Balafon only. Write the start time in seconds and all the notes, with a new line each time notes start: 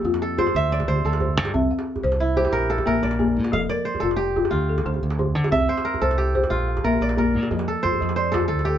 Already playing: A#3
0.05 F4
0.38 F4
0.88 D3 G4
1.22 D3
1.54 C4 E5
1.71 F5
2.04 C5
2.37 C5
2.70 F5
2.86 A#3 E5
3.19 A#3
3.52 F3 A4
3.69 A#4
4.03 F4
4.36 F4
4.69 A4
4.86 D3 G4
5.19 D3
5.51 C4 E5
5.68 F5
6.01 C5
6.35 C5
6.68 F5
6.85 A#3 E5
7.18 A#3
7.51 F3
7.68 A4
7.84 F4
8.00 F3
8.17 D5
8.34 F4
8.67 A4